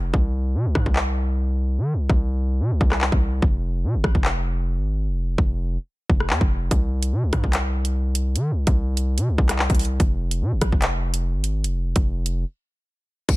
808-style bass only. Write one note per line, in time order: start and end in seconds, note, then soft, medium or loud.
0.00 0.12 F1 loud
0.14 0.56 C2 loud
0.55 0.67 C3 loud
0.66 0.75 C2 loud
0.75 0.85 G2 loud
0.86 1.79 C2 loud
1.78 1.95 D#3 loud
1.94 2.09 C2 medium
2.10 2.62 C2 loud
2.60 2.73 C3 loud
2.71 2.80 C2 loud
2.81 3.11 C2 loud
3.12 3.41 C2 loud
3.42 3.85 F1 loud
3.83 3.96 C3 loud
3.94 4.04 F1 loud
4.04 4.14 G#1 loud
4.15 4.78 F1 loud
4.77 5.08 G#1 loud
5.07 5.37 F1 loud
5.38 5.78 F1 loud
6.10 6.32 F1 loud
6.30 6.40 F2 loud
6.41 6.70 F1 loud
6.71 7.14 C2 loud
7.12 7.25 C3 loud
7.23 7.32 C2 loud
7.33 7.43 G2 loud
7.44 8.37 C2 loud
8.36 8.53 D#3 loud
8.51 8.66 C2 loud
8.67 9.19 C2 loud
9.18 9.30 C3 loud
9.29 9.38 C2 loud
9.38 9.68 C2 loud
9.70 9.99 C2 loud
10.00 10.43 F1 loud
10.41 10.53 C3 loud
10.52 10.61 F1 medium
10.62 10.72 G#1 loud
10.72 11.36 F1 loud
11.34 11.66 G#1 loud
11.64 11.94 F1 loud
11.96 12.45 F1 loud
13.29 13.37 C2 loud